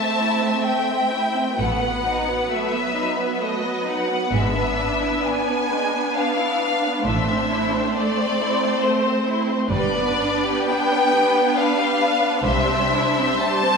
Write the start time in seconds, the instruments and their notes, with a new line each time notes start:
Already playing: viola section A3 C4, violin section C4 E5 A5
0.20 violin section E4
0.42 violin section C4
0.66 violin section A3 G5
0.90 violin section C4
1.12 violin section E4
1.36 violin section C4
1.58 double bass section A1, cello section A2, viola section F#3 B3, violin section A3 B4 F#5
1.82 violin section B3
2.05 violin section D#4
2.27 violin section B3
2.51 violin section A3 E5
2.72 violin section B3
2.94 violin section D#4
3.17 violin section B3
3.34 violin section E5
3.39 violin section A3 D#5
3.62 violin section B3
3.83 violin section D#4
3.89 violin section F#5
4.08 violin section B3
4.32 double bass section G#1, cello section G#2, violin section G#3 E5, viola section B3 D4
4.55 violin section B3
4.77 violin section D4
5.00 violin section E4
5.23 violin section D4 G#5
5.47 violin section B3
5.69 violin section G#3
5.91 violin section B3
6.15 violin section D4 F5
6.38 violin section E4
6.62 violin section D4
6.86 violin section B3
7.05 double bass section A1, cello section A2, viola section A3, violin section A3 C5 E5
7.28 violin section C4
7.51 violin section E4
7.72 violin section C4
7.94 violin section A3 D5, viola section C4
8.17 violin section C4
8.41 violin section E4
8.64 violin section C4
8.80 violin section A3 C5
9.06 violin section C4
9.26 violin section E4
9.49 violin section C4
9.68 double bass section G1, cello section G2, violin section G3 B4 D5, viola section B3 D4
9.94 violin section B3
10.19 violin section D4
10.45 violin section G4
10.67 violin section D4 G5
10.93 violin section B3
11.13 violin section G3
11.34 violin section B3
11.55 violin section D4 F5
11.78 violin section G4
11.99 violin section D4
12.23 violin section B3
12.43 double bass section C2, cello section C2, violin section G3 C5 E5, viola section G3
12.69 violin section C4
12.93 violin section E4
13.18 violin section C4
13.39 violin section G3 A5, viola section C4
13.64 violin section C4